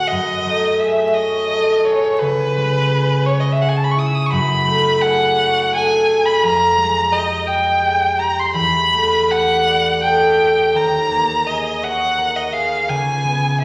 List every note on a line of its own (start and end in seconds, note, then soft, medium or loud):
0.00 0.12 A2 soft
0.00 2.22 G#3 soft
0.00 2.23 F#4 soft
0.00 0.79 G#4 soft
0.00 1.15 C#5 soft
0.08 2.24 F#2 soft
0.08 0.81 D#5 medium
0.46 2.23 A3 soft
0.79 1.85 G#4 soft
0.79 1.15 E5 medium
1.14 3.25 C#5 soft
1.14 1.86 D#5 medium
1.51 2.23 A4 soft
1.85 2.90 G#4 soft
1.85 2.20 C#5 medium
2.19 4.35 C#2 medium
2.19 3.27 B4 medium
2.57 6.47 G#3 soft
2.91 3.60 G#4 soft
3.26 3.41 C#5 medium
3.26 5.36 C#5 soft
3.40 3.54 D#5 medium
3.52 3.63 E5 medium
3.61 5.01 G#4 soft
3.61 3.70 F#5 medium
3.69 3.78 G#5 medium
3.77 3.85 A5 medium
3.84 3.93 B5 medium
3.91 4.00 C#6 medium
3.96 6.46 E4 soft
3.96 4.08 D#6 medium
4.06 4.16 E6 medium
4.15 4.27 D#6 medium
4.26 4.32 C#6 medium
4.31 6.46 F#2 medium
4.31 5.03 B5 medium
4.66 6.45 A3 soft
5.02 6.07 G#4 soft
5.02 5.73 F#5 medium
5.38 6.45 C#5 soft
5.72 6.45 A4 soft
5.72 6.27 G#5 medium
6.08 7.81 G#4 soft
6.25 6.45 B5 medium
6.43 8.58 F2 soft
6.43 7.13 A#5 medium
6.77 8.58 G#3 soft
7.12 8.18 G4 soft
7.12 7.48 D#5 medium
7.47 8.58 D#5 soft
7.47 8.20 G5 medium
7.83 8.58 G#4 soft
8.19 9.28 G4 soft
8.19 8.41 A#5 medium
8.40 8.55 C6 medium
8.54 10.76 E2 soft
8.54 9.32 B5 medium
8.92 10.77 A3 soft
9.29 10.36 G4 soft
9.29 10.02 F#5 medium
9.66 10.77 D5 soft
10.01 10.77 A4 soft
10.01 10.77 G5 medium
10.37 10.76 G4 soft
10.74 12.93 D#2 soft
10.74 11.48 A#5 medium
11.11 12.93 A#3 soft
11.47 12.51 G#4 soft
11.47 11.86 D#5 medium
11.82 13.64 C#5 soft
11.82 12.37 F#5 medium
12.18 12.92 A#4 soft
12.36 12.54 D#5 medium
12.53 13.61 G#4 soft
12.53 12.90 F5 medium
12.89 13.64 C#2 medium
12.89 13.60 G#5 medium
13.24 13.64 B3 soft
13.61 13.64 E5 medium